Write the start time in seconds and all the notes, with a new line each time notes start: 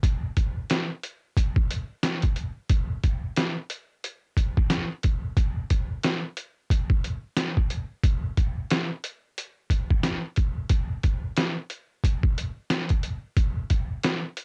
0.03 kick, closed hi-hat
0.37 kick, closed hi-hat
0.70 snare, closed hi-hat
1.03 closed hi-hat
1.37 kick, closed hi-hat
1.56 kick
1.71 closed hi-hat
2.03 snare, closed hi-hat
2.22 kick, closed hi-hat
2.36 closed hi-hat
2.69 kick, closed hi-hat
3.04 kick, closed hi-hat
3.36 snare, closed hi-hat
3.70 closed hi-hat
4.04 closed hi-hat
4.37 kick, closed hi-hat
4.57 kick
4.70 snare, closed hi-hat
5.03 kick, closed hi-hat
5.37 kick, closed hi-hat
5.70 kick, closed hi-hat
6.03 snare, closed hi-hat
6.37 closed hi-hat
6.70 kick, closed hi-hat
6.90 kick
7.04 closed hi-hat
7.37 snare, closed hi-hat
7.57 kick
7.70 closed hi-hat
8.04 kick, closed hi-hat
8.37 kick, closed hi-hat
8.70 snare, closed hi-hat
9.04 closed hi-hat
9.38 closed hi-hat
9.70 kick, closed hi-hat
9.90 kick
10.03 snare, closed hi-hat
10.36 kick, closed hi-hat
10.69 kick, closed hi-hat
11.03 kick, closed hi-hat
11.37 snare, closed hi-hat
11.70 closed hi-hat
12.04 kick, closed hi-hat
12.23 kick
12.38 closed hi-hat
12.70 snare, closed hi-hat
12.89 kick, closed hi-hat
13.03 closed hi-hat
13.37 kick, closed hi-hat
13.70 kick, closed hi-hat
14.04 snare, closed hi-hat
14.37 closed hi-hat